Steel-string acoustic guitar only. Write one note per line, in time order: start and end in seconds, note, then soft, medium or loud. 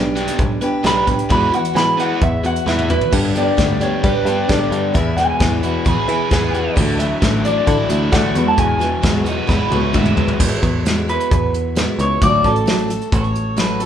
0.00 0.61 G3 medium
0.00 0.62 D4 medium
0.00 0.62 G4 medium
0.00 0.61 B4 medium
0.61 0.84 D4 medium
0.61 0.85 G4 medium
0.61 0.84 B4 medium
0.84 1.07 G3 medium
0.84 1.08 D4 medium
0.84 1.07 G4 medium
0.84 1.05 B4 medium
1.07 1.30 D4 soft
1.07 1.30 G4 medium
1.07 1.30 B4 medium
1.29 1.53 E3 medium
1.29 1.53 G#3 medium
1.29 1.53 B3 medium
1.29 1.52 E4 medium
1.29 1.51 F#4 medium
1.52 1.74 B3 soft
1.52 1.75 E4 soft
1.52 1.75 F#4 medium
1.73 2.43 G#3 medium
1.73 2.44 B3 medium
1.73 2.44 E4 medium
1.73 2.42 F#4 medium
2.43 2.66 B3 soft
2.43 2.67 E4 medium
2.43 2.67 F#4 medium
2.66 2.89 G#3 medium
2.66 2.90 B3 medium
2.66 2.89 E4 medium
2.66 2.87 F#4 medium
2.89 3.12 B3 soft
2.89 3.13 E4 medium
2.89 3.12 F#4 medium
3.12 3.35 G2 medium
3.12 3.35 D3 medium
3.12 3.36 G3 medium
3.12 3.35 B3 medium
3.12 3.34 D4 medium
3.12 3.33 G4 medium
3.34 3.57 G3 soft
3.34 3.57 B3 soft
3.34 3.58 D4 soft
3.34 3.58 G4 soft
3.57 3.80 G2 medium
3.57 3.80 D3 medium
3.57 3.81 G3 medium
3.57 3.81 B3 medium
3.57 3.80 D4 medium
3.57 3.79 G4 medium
3.80 4.02 G3 soft
3.80 4.03 B3 soft
3.80 4.04 D4 soft
3.80 4.03 G4 soft
4.03 4.26 G3 medium
4.03 4.27 B3 medium
4.03 4.26 D4 medium
4.03 4.25 G4 medium
4.26 4.48 G3 soft
4.26 4.49 B3 soft
4.26 4.49 D4 medium
4.26 4.49 G4 medium
4.49 4.94 G2 medium
4.49 4.95 D3 medium
4.49 4.93 G3 medium
4.49 4.93 B3 medium
4.49 4.95 D4 medium
4.49 4.96 G4 medium
4.94 5.17 E3 medium
4.94 5.17 B3 medium
4.94 5.17 E4 medium
4.94 5.15 G#4 medium
5.17 5.40 B3 soft
5.17 5.41 E4 soft
5.17 5.40 G#4 medium
5.40 5.63 E3 medium
5.40 5.63 B3 medium
5.40 5.63 E4 medium
5.40 5.61 G#4 medium
5.63 5.85 B3 soft
5.63 5.86 E4 soft
5.63 5.85 G#4 medium
5.85 6.08 E3 medium
5.85 6.08 B3 medium
5.85 6.08 E4 medium
5.85 6.06 G#4 medium
6.08 6.30 B3 medium
6.08 6.31 E4 medium
6.08 6.31 G#4 medium
6.31 6.76 E3 medium
6.31 6.76 B3 loud
6.31 6.77 E4 medium
6.31 6.77 G#4 loud
6.76 6.99 D3 medium
6.76 6.99 E3 medium
6.76 6.99 A3 medium
6.76 6.99 E4 loud
6.76 6.97 F#4 medium
6.98 7.21 A3 soft
6.98 7.22 E4 medium
6.98 7.22 F#4 soft
7.22 7.45 D3 medium
7.22 7.45 E3 medium
7.22 7.45 A3 medium
7.22 7.45 E4 medium
7.22 7.43 F#4 medium
7.44 7.67 A3 soft
7.44 7.68 E4 medium
7.44 7.67 F#4 soft
7.67 7.90 E3 medium
7.67 7.90 A3 medium
7.67 7.90 E4 medium
7.67 7.88 F#4 medium
7.89 8.12 A3 soft
7.89 8.13 E4 medium
7.89 8.12 F#4 medium
8.12 8.35 D3 medium
8.12 8.36 E3 medium
8.12 8.36 A3 medium
8.12 8.35 E4 medium
8.12 8.34 F#4 medium
8.35 8.82 E3 medium
8.35 8.82 G#3 medium
8.35 8.81 B3 medium
8.35 8.80 E4 medium
8.35 8.78 F#4 medium
8.79 9.02 B3 soft
8.79 9.03 E4 medium
8.79 9.03 F#4 soft
9.02 9.26 E3 medium
9.02 9.26 G#3 medium
9.02 9.26 B3 medium
9.02 9.25 E4 medium
9.02 9.24 F#4 medium
9.25 9.48 B3 soft
9.25 9.48 E4 medium
9.25 9.48 F#4 medium
9.47 9.71 G#3 medium
9.47 9.72 B3 medium
9.47 9.71 E4 medium
9.47 9.69 F#4 medium
9.70 9.93 B3 medium
9.70 9.94 E4 medium
9.70 9.94 F#4 medium
9.93 10.38 E3 medium
9.93 10.39 G#3 medium
9.93 10.39 B3 loud
9.93 10.40 E4 loud
9.93 10.40 F#4 medium
10.39 10.62 E3 medium
10.39 10.63 G#3 medium
10.39 10.63 B3 medium
10.39 10.62 E4 medium
10.39 10.60 F#4 medium
10.62 10.85 B3 soft
10.62 10.86 E4 medium
10.62 10.85 F#4 medium
10.85 11.08 G#3 medium
10.85 11.09 B3 medium
10.85 11.08 E4 medium
10.85 11.07 F#4 medium
11.08 11.76 B3 soft
11.08 11.77 E4 medium
11.08 11.78 F#4 medium
11.75 11.98 G#3 medium
11.75 11.99 B3 medium
11.75 11.99 E4 medium
11.75 11.97 F#4 medium
11.98 12.22 B3 soft
11.98 12.22 E4 soft
11.98 12.21 F#4 medium
12.22 12.44 D3 medium
12.22 12.44 F#3 medium
12.22 12.45 A3 medium
12.22 12.45 F#4 loud
12.22 12.43 A4 medium
12.44 12.66 A3 soft
12.44 12.67 F#4 medium
12.44 12.67 A4 medium
12.66 12.89 F#3 medium
12.66 12.90 A3 medium
12.66 12.89 F#4 medium
12.66 12.87 A4 medium
12.88 13.56 A3 soft
12.88 13.58 F#4 medium
12.88 13.57 A4 medium
13.56 13.80 F#3 medium
13.56 13.80 A3 medium
13.56 13.81 F#4 medium
13.56 13.79 A4 medium
13.80 13.86 F#4 medium
13.80 13.86 A4 medium